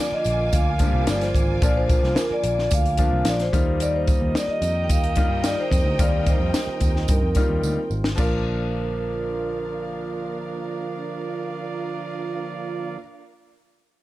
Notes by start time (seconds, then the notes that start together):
Already playing: D3 F3 A#3 F4 A#4 F5 G#5 D6
0.00 D5
0.12 D#5, muted picked electric bass stroke
0.24 A#1, closed hi-hat, tambourine
0.53 D2 F5, kick, closed hi-hat, tambourine
0.79 F3 A#3 D4 F4, kick, closed hi-hat, tambourine
0.87 G3
0.94 C2
1.07 G1 D5, snare, closed hi-hat, tambourine
1.21 C5, snare, closed hi-hat
1.35 G#1, kick, closed hi-hat, tambourine
1.61 A#1 F3 A#3 D4 F4 D5, kick, closed hi-hat, tambourine
1.77 C5
1.89 kick, closed hi-hat, tambourine
2.03 C2, snare
2.16 A#4, snare, closed hi-hat, tambourine
2.31 D5, muted picked electric bass stroke
2.44 A#1, closed hi-hat, tambourine
2.58 snare
2.71 D2 F5, kick, closed hi-hat, tambourine
2.86 closed hi-hat
2.97 F3 A#3 D4 F4, kick, closed hi-hat, tambourine
3.12 C2
3.25 A#1 D5, snare, closed hi-hat, tambourine
3.40 C5, snare, closed hi-hat
3.52 D#2 D#3 G3 A#3 D#4 F4 G4 D#5, kick, closed hi-hat, tambourine
3.80 D5, closed hi-hat, tambourine
3.96 C5
4.08 kick, closed hi-hat, tambourine
4.21 D#2
4.35 D5, snare, closed hi-hat, tambourine
4.48 D#5, muted picked electric bass stroke
4.62 F2 D#4 A#4 G5, closed hi-hat, tambourine
4.84 G5
4.89 D#2 F5, kick, closed hi-hat, tambourine
5.04 closed hi-hat
5.16 G3 A#3 D#4 F4, kick, closed hi-hat, tambourine
5.30 G2
5.44 D5, snare, closed hi-hat, tambourine
5.60 C5
5.71 F2 C4, kick, closed hi-hat, tambourine
5.85 D2
5.99 D#2 G3 A#3 D#4 F4 D5, kick, closed hi-hat, tambourine
6.26 C5, kick, closed hi-hat, tambourine
6.40 F2
6.54 snare, closed hi-hat, tambourine
6.67 muted picked electric bass stroke
6.81 D#2, kick, closed hi-hat, tambourine
6.96 snare
7.08 G2 A#4, kick, closed hi-hat, tambourine
7.22 F2
7.35 G3 A#3 D#4 F4, kick, closed hi-hat, tambourine
7.49 D#2
7.63 D2, tambourine
7.90 G#1, tambourine
8.04 snare
8.16 A#1 D3 F3 A#3 D4 F4 A#4 D5 F5, kick, crash, tambourine
8.20 F4 A#4